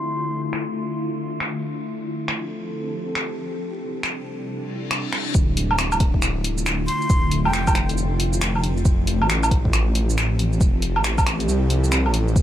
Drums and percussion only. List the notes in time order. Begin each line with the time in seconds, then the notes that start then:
0.53 finger snap
1.40 finger snap
2.28 finger snap
3.15 finger snap
4.03 finger snap
4.91 finger snap
5.13 finger snap
5.35 kick, shaker
5.57 open hi-hat
5.71 low woodblock
5.79 finger snap, shaker
5.92 low woodblock, shaker
6.00 kick, open hi-hat
6.14 kick
6.22 finger snap, shaker
6.44 open hi-hat
6.58 shaker
6.66 finger snap, shaker
6.88 open hi-hat
7.02 shaker
7.10 kick, shaker
7.31 open hi-hat
7.45 low woodblock
7.53 finger snap, shaker
7.67 kick, low woodblock, shaker
7.75 finger snap, open hi-hat
7.89 open hi-hat, shaker
7.97 shaker
8.20 open hi-hat
8.33 shaker
8.41 finger snap, shaker
8.55 low woodblock
8.63 open hi-hat
8.77 shaker
8.85 kick, shaker
9.07 open hi-hat
9.22 low woodblock
9.30 finger snap, shaker
9.43 low woodblock, shaker
9.51 kick, open hi-hat
9.65 kick
9.73 finger snap, shaker
9.95 open hi-hat
10.10 shaker
10.18 finger snap, shaker
10.39 open hi-hat
10.53 shaker
10.61 kick, shaker
10.82 open hi-hat
10.96 low woodblock
11.04 finger snap, shaker
11.18 kick, low woodblock, shaker
11.27 finger snap, open hi-hat
11.40 open hi-hat, shaker
11.49 shaker
11.70 open hi-hat
11.84 shaker
11.92 finger snap, shaker
12.06 low woodblock
12.14 open hi-hat
12.28 shaker
12.36 kick, shaker